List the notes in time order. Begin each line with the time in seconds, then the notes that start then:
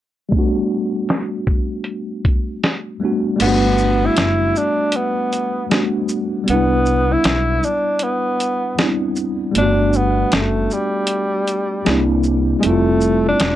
0.29 G3 A3, kick, closed hi-hat
0.34 B3 D4
0.38 F#4
1.09 snare, closed hi-hat
1.47 kick
1.84 closed hi-hat
2.25 kick, closed hi-hat
2.64 snare, closed hi-hat
3.00 G3 A3 B3 D4
3.05 F#4
3.36 G3 A3, closed hi-hat, crash
3.40 G1 B3 D4
3.46 F#4
3.78 shaker
4.06 E4
4.17 F#1, snare, closed hi-hat
4.56 D4, shaker
4.92 B3, closed hi-hat
5.33 closed hi-hat, shaker
5.69 G3 A3 B3 D4, snare, closed hi-hat
5.74 F#4
6.08 shaker
6.44 G3 B3, closed hi-hat
6.49 C2 B3 D4
6.54 E4
6.86 shaker
7.13 E4
7.24 B1, snare, closed hi-hat
7.63 D4, shaker
7.99 closed hi-hat
8.03 B3
8.40 closed hi-hat, shaker
8.77 G3 B3 C4 D4, snare, closed hi-hat
8.82 E4
9.16 shaker
9.51 G3 A3, closed hi-hat
9.56 G1 B3 D4
9.61 F#4
9.93 B3, shaker
10.32 F#1 A3, snare, closed hi-hat
10.71 G3, shaker
11.07 closed hi-hat
11.48 closed hi-hat, shaker
11.85 C2 G3 A#3 C4 D4, snare, closed hi-hat
11.90 E4
12.24 shaker
12.59 G3 G#3 A3, closed hi-hat
12.64 F1 A3 C4 E4
12.69 F4
13.01 shaker
13.29 D4
13.40 E1, snare, closed hi-hat